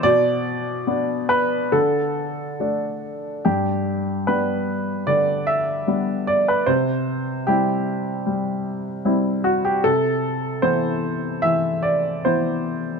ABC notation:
X:1
M:4/4
L:1/16
Q:1/4=74
K:G
V:1 name="Grand piano"
d6 B2 A6 z2 | G4 B4 d2 e4 d B | c4 G8- G2 F G | A4 c4 e2 d2 c4 |]
V:2 name="Grand piano"
B,,4 [B,D]4 D,4 [A,D]4 | G,,4 [G,B,D]4 D,4 [G,B,D]4 | C,4 [G,CE]4 G,4 [G,CE]4 | C,4 [E,B,E]4 E,4 [E,B,E]4 |]